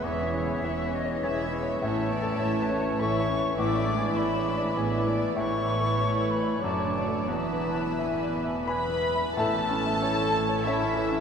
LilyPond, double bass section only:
\new Staff \with { instrumentName = "Double bass section" } { \clef bass \time 3/4 \key cis \minor \tempo 4 = 100 e,,4 e,,4 e,,4 | \key a \major a,,4 a,,4 a,,4 | a,,4 a,,4 a,,4 | a,,2 fis,,4 |
e,,2~ e,,8 r8 | a,,2. | }